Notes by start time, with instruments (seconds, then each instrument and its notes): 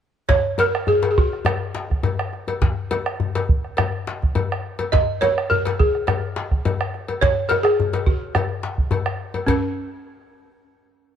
0.29 balafon C#5, bombo low, djembe slap, djembe bass
0.58 balafon A#4, bombo rim, cowbell, djembe slap, djembe tone
0.75 bombo rim
0.87 balafon G#4, djembe slap, djembe bass
1.03 cowbell, djembe slap, djembe tone
1.11 balafon G#4
1.18 balafon F#4, bombo low
1.33 bombo rim
1.45 bombo rim, cowbell, djembe tone, djembe bass
1.75 bombo rim, djembe slap
1.90 bombo rim, bombo low, djembe slap
2.03 cowbell, djembe tone, djembe bass
2.19 bombo rim
2.33 bombo rim, djembe slap
2.48 cowbell, djembe tone
2.62 bombo low, djembe slap, djembe bass
2.91 bombo rim, cowbell, djembe slap, djembe tone
3.06 bombo rim
3.20 djembe slap, djembe bass
3.35 cowbell, djembe slap, djembe tone
3.49 bombo low
3.64 bombo rim
3.77 bombo rim, cowbell, djembe tone, djembe bass
4.07 bombo rim, djembe slap
4.22 bombo rim, bombo low, djembe slap
4.35 cowbell, djembe tone, djembe bass
4.52 bombo rim
4.79 cowbell, djembe tone
4.92 balafon D#5, bombo low, djembe slap, djembe bass
5.21 balafon C#5, bombo rim, cowbell, djembe slap, djembe tone
5.38 bombo rim
5.50 balafon A#4, djembe slap, djembe bass
5.65 cowbell, djembe slap, djembe tone
5.79 balafon G#4, bombo low
5.95 bombo rim
6.07 bombo rim, cowbell, djembe tone, djembe bass
6.36 bombo rim, djembe slap
6.51 bombo rim, bombo low, djembe slap
6.65 cowbell, djembe tone, djembe bass
6.81 bombo rim
6.94 bombo rim, djembe slap
7.08 cowbell, djembe tone
7.21 balafon C#5, bombo low, djembe slap, djembe bass
7.49 balafon A#4, bombo rim, cowbell, djembe slap, djembe tone
7.63 balafon G#4, bombo rim, djembe slap
7.80 djembe slap, djembe bass
7.93 cowbell, djembe slap, djembe tone
8.06 balafon F#4, bombo low, djembe slap
8.35 bombo rim, cowbell, djembe slap, djembe tone, djembe bass
8.63 djembe slap
8.78 bombo low
8.91 cowbell, djembe slap, djembe tone, djembe bass
9.06 bombo rim, djembe slap
9.34 cowbell, djembe tone
9.47 balafon C#4, bombo low, cowbell, djembe bass